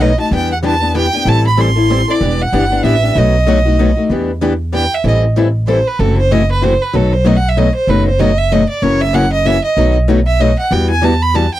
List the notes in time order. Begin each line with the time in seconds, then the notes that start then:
Already playing: B1
0.00 B2 F#3 A3 D#4 F#4 B4 D#5
0.18 A3 D#4 F#4 A5
0.31 E2 E3 G3 B3 D4 E4 G4 B4 G5
0.52 F#5
0.62 E3 G3 B3 D4 E4 G4 B4 A5
0.81 B3 D4 G4
0.94 E3 G3 B3 D4 E4 G4 B4 G5
1.13 B3 D4 G4
1.25 A1 E3 G3 C4 E4 A4 A5
1.47 B5
1.57 E3 G3 C4 E4 A4 C6
1.75 C4 E4 A4
1.90 E3 G3 C4 E4 A4
2.08 C4 E4 A4 D5
2.20 E1 E3 G3 B3 D4 E4 G4 B4
2.42 F#5
2.52 G1 E3 G3 B3 D4 E4 G4 B4
2.70 B3 D4 G4
2.83 A1 E3 G3 B3 D4 E4 G4 B4 E5
3.02 B3 D4 G4
3.15 B1 B2 F#3 A3 D#4 F#4 B4 D#5
3.46 B2 F#3 A3 D#4 F#4 B4
3.65 A3 D#4 F#4
3.79 B2 F#3 A3 D#4 F#4 B4
3.97 A3 D#4 F#4
4.09 E2 E3 G3 B3 D4 E4 G4 B4
4.41 E3 G3 B3 D4 E4 G4 B4
4.72 E3 G3 B3 D4 E4 G4 B4 G5
4.94 E5
5.04 A1 E3 G3 C4 E4 A4 D#5
5.36 E3 G3 C4 E4 A4
5.67 E3 G3 C4 E4 A4 C5
5.87 B4
5.99 F#1 C3 E3 F#3 A3 C4 E4 F#4 A4
6.18 C5
6.31 C3 E3 F#3 A3 C4 E4 F#4 A4 D#5
6.52 B4
6.61 C3 E3 F#3 A3 C4 E4 F#4 A4 C5
6.82 B4
6.93 B1 B2 D#3 F#3 A3 B3 D#4 F#4 A4
7.13 C5
7.24 B2 D#3 F#3 A3 B3 D#4 F#4 A4 D#5
7.36 F#5
7.49 E5
7.57 B2 D#3 F#3 A3 B3 D#4 F#4 A4 D#5
7.75 C5
7.87 F#1 B2 D#3 F#3 A3 B3 D#4 F#4 A4 B4
8.08 C5
8.19 B2 D#3 F#3 A3 B3 D#4 F#4 A4 D#5
8.38 E5
8.51 B2 D#3 F#3 A3 B3 D#4 F#4 A4 D#5
8.69 D5
8.82 F#1 C#3 E3 F#3 A#3 C#4 E4 F#4 A#4 C#5
9.01 E5
9.13 C#3 E3 F#3 A#3 C#4 E4 F#4 A#4 F#5
9.33 D#5
9.45 C#3 E3 F#3 A#3 C#4 E4 F#4 A#4 E5
9.65 D#5
9.76 B1 B2 D#3 F#3 A3 B3 D#4 F#4 A4
10.08 B2 D#3 F#3 A3 B3 D#4 F#4 A4
10.27 E5
10.40 B2 D#3 F#3 A3 B3 D#4 F#4 A4 D#5
10.59 F#5
10.71 E2 E3 G3 B3 F#4 G5
10.90 G#5
11.02 E3 G3 B3 F#4 A5
11.22 B5
11.34 E3 G3 B3 F#4 A5
11.54 G5